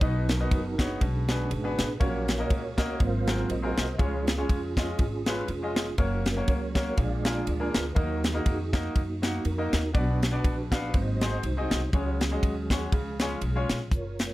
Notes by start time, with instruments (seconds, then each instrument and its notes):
0.01 upright bass B1, grand piano B2 B3 D#4 F#4 B4 D#5, tonewheel organ F#3 B3 D#4 F#4 B4, kick, ride
0.29 tonewheel organ D#4 F#4 A#4, snare, ride
0.40 grand piano B3 D#4 F#4 B4 D#5
0.51 upright bass F#1, kick, ride
0.78 grand piano B3 D#4 F#4 B4 C#5, tonewheel organ D4 G#4, kick, snare, ride
1.00 upright bass B1, grand piano B2, tonewheel organ D3 G#3 C#4, kick, ride
1.28 grand piano B3 D4 F#4 G#4 B4, snare, ride
1.51 upright bass G#1, tonewheel organ D4 G#4 B4, ride
1.64 grand piano B3 D4 F#4 G#4 B4
1.79 upright bass A1, snare, ride
2.00 upright bass A#1, grand piano A#2 A#3 C#4 F#4 A#4 C#5, tonewheel organ F#3 A#3 C#4 F#4 A#4 C#5, kick, ride
2.28 snare, ride
2.39 grand piano A#3 C#4 F#4 A#4 D#5
2.50 upright bass C#2, kick, ride
2.77 grand piano A#3 C#4 F#4 A#4 D#5, kick, snare, ride
3.00 upright bass G#1, grand piano G#2, tonewheel organ F#3 A#3 C4 F4 A#4 C5 F5, kick, ride
3.27 grand piano C4 F4 F#4 G#4 A#4, snare, ride
3.49 upright bass A#1, tonewheel organ F#4 C5 D#5, ride
3.62 grand piano C4 F4 F#4 G#4 A#4
3.78 upright bass C2, snare, ride
3.98 upright bass C#2, grand piano C#3 G#3 C#4 F4 G#4 C#5, tonewheel organ F3 G#3 C#4 F4 G#4 C#5, kick, ride
4.27 tonewheel organ C#4 F4 G#4, snare, ride
4.38 grand piano G#3 C#4 F4 G#4 C#5
4.49 upright bass F2, kick, ride
4.77 grand piano G#3 C#4 F4 G#4 D#5, kick, snare, ride
4.99 upright bass G#1, kick, ride
5.26 grand piano G#3 C#4 F4 G#4 B4, snare, ride
5.48 upright bass F1, tonewheel organ C#4 F4 G#4, ride
5.63 grand piano G#3 C#4 F4 G#4 D#5
5.76 snare, ride
5.98 upright bass F#1, tonewheel organ F#3 A#3 C#4 F#4 A#4, grand piano A#3 C#4 F#4 A#4 C#5, kick, ride
6.26 snare, ride
6.37 grand piano A#3 C#4 F#4 A#4 C#5
6.48 upright bass C#2, tonewheel organ F#4 A#4 C#5, kick, ride
6.75 grand piano A#3 C#4 F#4 A#4 C#5, kick, snare, ride
6.97 upright bass A#1, grand piano A#2, tonewheel organ F3 G#3 D4 G#4 D5 F5, kick, ride
7.25 grand piano A#3 D4 F4 G#4 A#4, tonewheel organ F4 G#4 D5, snare, ride
7.47 upright bass D2, ride
7.60 grand piano A#3 D4 F4 G#4 A#4
7.74 upright bass D2, tonewheel organ B4, snare, ride
7.95 upright bass D#2, grand piano D#3 A#3 D#4 F#4 A#4 D#5, tonewheel organ F#3 A#3 D#4 F#4 A#4, kick, ride
8.24 tonewheel organ D#4 G#4, snare, ride
8.34 grand piano A#3 D#4 F#4 A#4 D#5
8.46 upright bass F2, kick, ride
8.73 grand piano A#3 D#4 F#4 A#4 D#5, tonewheel organ A#3 D#4 F#4, kick, snare, ride
8.96 upright bass F#2, kick, ride
9.22 grand piano A#3 D#4 F#4 A#4 F#5, snare, ride
9.45 upright bass F2, tonewheel organ D#4 F#4 A#4, ride
9.58 grand piano A#3 D#4 F#4 A#4 D#5
9.73 upright bass D#2, snare, ride
9.94 upright bass B1, grand piano B2 B3 D4 F#4 B4 D5, tonewheel organ F#3 B3 D4 F#4 B4, kick, ride
10.23 snare, ride
10.32 grand piano B3 D4 F#4 B4 D5
10.44 upright bass A#1, kick, ride
10.71 grand piano B3 D4 F#4 B4 F5, kick, snare, ride
10.93 upright bass G#1, grand piano G#2, tonewheel organ F#3 A#3 C4 F#4 C5 D#5, kick, ride
11.21 grand piano C4 D#4 F#4 G#4 C5, snare, ride
11.43 upright bass C2, tonewheel organ D#4 F#4 C5, ride
11.57 grand piano C4 D#4 F#4 G#4 D#5
11.71 upright bass C2, snare, ride
11.92 upright bass C#2, grand piano C#3 G#3 C#4 F#4 G#4 C#5, tonewheel organ F#3 G#3 C#4 F#4 G#4 C#5, kick, ride
12.21 tonewheel organ C#4 G#4, snare, ride
12.31 grand piano G#3 C#4 F#4 G#4 D#5
12.43 upright bass D#2, kick, ride
12.70 grand piano G#3 C#4 F#4 G#4 C#5, kick, snare, ride
12.92 upright bass C#2, grand piano C#3, tonewheel organ F3 G#3 C#4, kick, ride
13.19 grand piano G#3 C#4 F4 G#4 C#5, snare, ride
13.41 upright bass B1, ride
13.56 grand piano G#3 C#4 F4 G#4 C#5
13.70 upright bass A#1, snare, ride
13.91 upright bass F#1, tonewheel organ F4 A#4 C#5, kick, closed hi-hat
14.19 tonewheel organ G#3 A#3 F4, snare, closed hi-hat